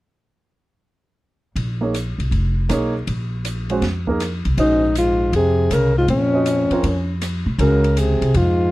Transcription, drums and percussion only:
1.56 ride soft
1.94 hi-hat pedal soft
1.94 ride soft
2.20 ride soft
2.32 ride soft
2.69 cross-stick medium
2.69 hi-hat pedal soft
2.69 ride soft
3.07 ride soft
3.45 hi-hat pedal soft
3.45 ride medium
3.69 ride soft
3.82 snare soft
3.82 ride soft
4.08 kick soft
4.20 cross-stick medium
4.20 hi-hat pedal soft
4.20 ride medium
4.45 ride soft
4.58 ride soft
4.95 hi-hat pedal medium
4.95 ride soft
5.33 ride soft
5.71 cross-stick soft
5.71 hi-hat pedal soft
5.71 ride medium
6.08 ride soft
6.46 hi-hat pedal soft
6.46 ride medium
6.71 ride soft
6.84 ride medium
7.21 cross-stick soft
7.21 hi-hat pedal medium
7.21 ride medium
7.59 ride medium
7.84 ride soft
7.97 hi-hat pedal soft
7.97 ride soft
8.22 ride soft
8.34 ride soft

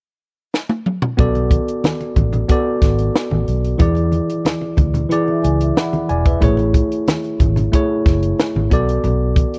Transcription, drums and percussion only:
0.54 snare medium
0.69 high tom medium
0.86 mid tom medium
1.02 floor tom medium
1.19 kick loud
1.19 closed hi-hat medium
1.19 muted conga soft
1.19 low conga medium
1.35 closed hi-hat soft
1.35 muted conga soft
1.51 kick medium
1.51 closed hi-hat medium
1.51 high conga soft
1.68 closed hi-hat medium
1.84 snare loud
1.84 closed hi-hat medium
1.84 muted conga soft
1.84 high conga medium
2.01 closed hi-hat soft
2.01 muted conga soft
2.16 kick medium
2.16 closed hi-hat medium
2.16 high conga medium
2.16 low conga medium
2.33 closed hi-hat medium
2.33 low conga medium
2.49 kick medium
2.49 closed hi-hat medium
2.49 muted conga soft
2.82 kick medium
2.82 snare soft
2.82 closed hi-hat medium
2.99 closed hi-hat soft
3.15 snare loud
3.15 closed hi-hat medium
3.31 muted conga soft
3.31 high conga medium
3.48 closed hi-hat medium
3.64 closed hi-hat soft
3.79 kick medium
3.79 closed hi-hat medium
3.79 muted conga soft
3.79 low conga medium
3.95 closed hi-hat soft
3.95 muted conga soft
4.12 closed hi-hat medium
4.12 high conga soft
4.30 closed hi-hat medium
4.45 snare medium
4.45 closed hi-hat medium
4.45 muted conga soft
4.45 high conga medium
4.61 muted conga soft
4.77 kick medium
4.77 closed hi-hat medium
4.77 high conga medium
4.77 low conga medium
4.94 closed hi-hat medium
4.94 low conga medium
5.11 closed hi-hat loud
5.11 muted conga soft
5.28 muted conga soft
5.44 closed hi-hat medium
5.61 closed hi-hat medium
5.77 snare loud
5.77 closed hi-hat medium
5.77 muted conga soft
5.93 closed hi-hat soft
5.93 high conga medium
6.09 closed hi-hat medium
6.26 kick medium
6.26 closed hi-hat medium
6.42 kick medium
6.42 closed hi-hat medium
6.42 muted conga soft
6.42 low conga medium
6.57 closed hi-hat soft
6.57 muted conga soft
6.74 kick medium
6.74 closed hi-hat medium
6.74 high conga soft
6.92 closed hi-hat medium
7.08 snare loud
7.08 closed hi-hat medium
7.08 muted conga soft
7.08 high conga medium
7.24 closed hi-hat soft
7.40 kick medium
7.40 closed hi-hat medium
7.40 high conga medium
7.40 low conga medium
7.56 closed hi-hat medium
7.56 low conga medium
7.73 kick medium
7.73 closed hi-hat loud
7.73 muted conga soft
8.06 kick medium
8.06 snare soft
8.06 closed hi-hat medium
8.23 closed hi-hat medium
8.40 snare loud
8.40 closed hi-hat medium
8.40 muted conga soft
8.56 high conga medium
8.71 kick medium
8.71 closed hi-hat medium
8.89 closed hi-hat medium
9.04 closed hi-hat medium
9.04 muted conga soft
9.04 low conga medium
9.36 kick medium
9.36 closed hi-hat medium
9.36 high conga soft
9.54 closed hi-hat medium

